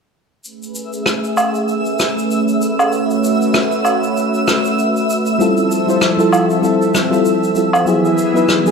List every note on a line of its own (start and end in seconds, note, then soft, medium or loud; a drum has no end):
0.44 5.36 A3 medium
0.44 5.36 C#4 medium
0.44 2.90 G#4 medium
0.44 5.36 B4 medium
0.44 8.71 E5 medium
0.44 8.71 E6 medium
0.44 shaker medium
0.63 shaker soft
0.75 shaker medium
0.93 shaker soft
1.06 cross-stick medium
1.06 shaker soft
1.24 shaker soft
1.37 low woodblock medium
1.37 shaker medium
1.55 shaker soft
1.68 shaker medium
1.85 shaker soft
1.99 cross-stick medium
1.99 shaker medium
2.18 shaker soft
2.31 shaker soft
2.48 shaker soft
2.62 shaker medium
2.79 low woodblock medium
2.79 shaker soft
2.92 5.38 F#4 medium
2.92 shaker soft
3.10 shaker soft
3.24 shaker medium
3.41 shaker soft
3.54 cross-stick medium
3.54 shaker medium
3.71 shaker soft
3.85 low woodblock medium
3.85 shaker medium
4.03 shaker soft
4.17 shaker medium
4.34 shaker soft
4.48 cross-stick medium
4.48 shaker medium
4.65 shaker soft
4.79 shaker soft
4.97 shaker soft
5.10 shaker medium
5.26 shaker soft
5.38 7.85 F3 medium
5.38 5.84 G3 medium
5.38 5.84 C4 medium
5.38 7.85 C4 medium
5.38 5.85 E4 medium
5.38 5.85 F4 medium
5.38 7.85 A4 medium
5.38 5.85 A4 medium
5.38 7.85 E5 medium
5.38 shaker medium
5.57 shaker soft
5.71 shaker medium
5.87 6.15 G3 medium
5.87 6.15 C4 medium
5.87 6.15 E4 medium
5.87 6.16 F4 medium
5.87 6.16 C5 medium
5.87 shaker soft
6.01 cross-stick medium
6.01 shaker medium
6.17 6.59 G3 medium
6.17 6.60 C4 medium
6.17 6.60 E4 medium
6.17 6.60 F4 medium
6.17 6.61 A4 loud
6.17 shaker soft
6.33 low woodblock medium
6.33 shaker medium
6.50 shaker soft
6.62 7.07 G3 medium
6.62 7.08 C4 medium
6.62 7.08 E4 medium
6.62 7.08 F4 medium
6.62 7.09 A4 medium
6.62 shaker medium
6.82 shaker soft
6.95 cross-stick medium
6.95 shaker medium
7.10 7.52 G3 medium
7.10 7.53 C4 medium
7.10 7.53 E4 medium
7.10 7.53 F4 medium
7.10 7.54 A4 loud
7.10 shaker medium
7.25 shaker medium
7.43 shaker soft
7.55 7.69 G3 medium
7.55 7.69 C4 medium
7.55 7.69 E4 medium
7.55 7.69 F4 medium
7.55 7.70 A4 medium
7.55 shaker medium
7.73 low woodblock medium
7.73 shaker soft
7.85 8.71 E3 medium
7.85 8.31 F#3 medium
7.85 8.32 B3 medium
7.85 8.71 B3 medium
7.85 8.32 E4 medium
7.85 8.71 G#4 medium
7.85 8.32 G#4 medium
7.85 8.71 E5 medium
7.85 shaker medium
8.05 shaker soft
8.18 shaker medium
8.33 8.62 F#3 medium
8.33 8.62 B3 medium
8.33 8.62 D#4 medium
8.33 8.62 E4 medium
8.33 8.63 B4 medium
8.33 shaker soft
8.49 cross-stick medium
8.49 shaker medium
8.64 8.71 F#3 medium
8.64 8.71 B3 medium
8.64 8.71 E4 medium
8.64 8.71 G#4 loud
8.64 shaker soft